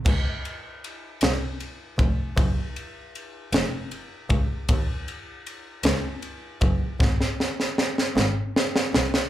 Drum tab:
CC |x-----------|------------|------------|------------|
RD |--x-x-x-x-x-|x-x-x-x-x-x-|x-x-x-x-x-x-|------------|
SD |------o-----|------o-----|------o-----|ooooooo-oooo|
BD |o---------o-|o---------o-|o---------o-|o-----------|